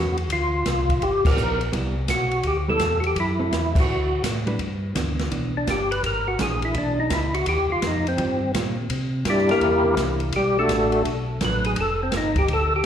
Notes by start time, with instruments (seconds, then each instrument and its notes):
Already playing: tonewheel organ E2 F#4, hollow-body jazz guitar A3 C#4 G#4 B4
0.18 ride
0.29 tonewheel organ D2 F4, kick, ride
0.65 tonewheel organ C2, kick, snare, hi-hat pedal, ride
0.89 kick, ride
1.01 tonewheel organ G1 G4, kick, ride
1.25 tonewheel organ G1 A#4, kick, crash
1.36 tonewheel organ A#1, hollow-body jazz guitar F3 B3 D#4, hi-hat pedal
1.61 ride
1.72 tonewheel organ C2, hollow-body jazz guitar G3 B3 E4, kick, ride
2.08 tonewheel organ B1 F#4, kick, snare, hi-hat pedal, ride
2.31 ride
2.43 tonewheel organ D2 G4, kick, ride
2.68 hollow-body jazz guitar G3 B3 E4, tonewheel organ A4
2.79 tonewheel organ E2, kick, snare, hi-hat pedal, ride
3.00 tonewheel organ F#4, ride
3.07 tonewheel organ G4
3.16 tonewheel organ F#2, kick, ride
3.20 tonewheel organ E4
3.39 hollow-body jazz guitar F#3 C4 E4 A4
3.51 tonewheel organ E2, kick, snare, hi-hat pedal, ride
3.75 kick, crash
3.80 tonewheel organ F#4
3.87 tonewheel organ D2
4.23 tonewheel organ A2, kick, snare, hi-hat pedal, ride
4.47 hollow-body jazz guitar G3 D4 E4 B4, ride
4.59 tonewheel organ G2, kick, ride
4.95 tonewheel organ D2, hollow-body jazz guitar E3 B3 D4, kick, snare, hi-hat pedal, ride
5.19 snare, ride
5.31 tonewheel organ B1, hollow-body jazz guitar E3 B3 D4, kick, ride
5.57 tonewheel organ D4
5.67 tonewheel organ G1 G4, kick, snare, hi-hat pedal, ride
5.91 tonewheel organ B4, ride
6.03 tonewheel organ G#1 A#4, kick, ride
6.28 tonewheel organ F#4
6.39 tonewheel organ A#1 G#4, hollow-body jazz guitar E3 A#3 D4 G#4, kick, snare, hi-hat pedal, ride
6.62 tonewheel organ E4, ride
6.74 tonewheel organ B1 D4, kick, ride
7.00 tonewheel organ D#4
7.10 tonewheel organ C#2 E4, kick, snare, hi-hat pedal, ride
7.34 tonewheel organ F#4, ride
7.46 tonewheel organ D#2 G4, kick, ride
7.70 tonewheel organ D#2 F4
7.82 tonewheel organ F2, kick, snare, hi-hat pedal, ride
7.87 tonewheel organ D#4
8.07 tonewheel organ C4, ride
8.18 tonewheel organ G2, hollow-body jazz guitar D#3 G3 C4 F4, kick, ride
8.54 tonewheel organ A#2, hollow-body jazz guitar D#3 G3 C4 F4, kick, snare, hi-hat pedal, ride
8.90 tonewheel organ C3, kick, ride
9.25 tonewheel organ G2 G4, kick, snare, hi-hat pedal, ride
9.30 tonewheel organ G3 D4 E4
9.38 snare
9.48 tonewheel organ G2 A#3 E4 G4 A#4, snare, ride
9.61 tonewheel organ E2, kick, ride
9.84 hollow-body jazz guitar E3 A#3 D4
9.97 tonewheel organ C2, kick, snare, hi-hat pedal, ride
10.20 ride
10.32 tonewheel organ B1 G3 G4, kick, ride
10.59 tonewheel organ A3 D4 F#4 A4
10.68 tonewheel organ A1, kick, snare, hi-hat pedal, ride
10.92 ride
11.05 tonewheel organ B1, kick, ride
11.40 tonewheel organ A1, hollow-body jazz guitar F#3 A3 D4, kick, snare, hi-hat pedal, ride
11.45 tonewheel organ B4
11.65 tonewheel organ G#4, ride
11.76 tonewheel organ F1, kick, ride
11.80 tonewheel organ A4
12.03 tonewheel organ C4
12.12 tonewheel organ G1, kick, snare, hi-hat pedal, ride
12.17 tonewheel organ D#4
12.36 tonewheel organ G4, kick, ride
12.48 tonewheel organ D2, kick, ride
12.53 tonewheel organ A4
12.76 tonewheel organ G4